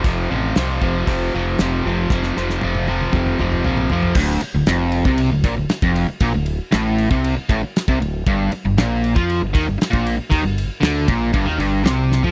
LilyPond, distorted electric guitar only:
\new Staff \with { instrumentName = "Distorted electric guitar" } { \clef bass \time 4/4 \key d \minor \tempo 4 = 117 <f, c f>8 <f, c f>8 <f, c f>8 <f, c f>8 <f, c f>8 <f, c f>8 <f, c f>8 <f, c f>8 | <f, c f>8 <f, c f>8 <f, c f>8 <f, c f>8 <f, c f>8 <f, c f>8 <f, c f>8 <f, c f>8 | d,8 r16 d,16 f,8. c8 d,16 bes,16 d,16 r16 f,8 r16 | bes,16 d,8 r16 a,8. c8 r16 a,16 r8 c16 d,8 |
g,8 r16 g,16 bes,8. f8 g,16 ees16 g,16 r16 bes,8 r16 | ees16 g,8 r16 d8 bes,8 g,16 ees16 g,8 c8. f16 | }